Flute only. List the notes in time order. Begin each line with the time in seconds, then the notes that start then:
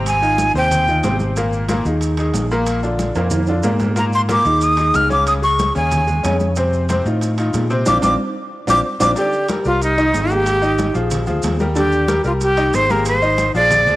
0.08 G#5
0.58 G5
3.99 A#5
4.15 C6
4.32 D6
4.63 D#6
4.96 F6
5.12 D6
5.28 D#6
5.44 C#6
5.77 G#5
7.88 D6
8.04 D6
8.70 D6
9.01 D6
9.17 G4
9.66 F4
9.83 D#4
10.32 G4
11.77 G4
12.26 F4
12.43 G4
12.75 C5
12.91 A#4
13.07 C5
13.56 D5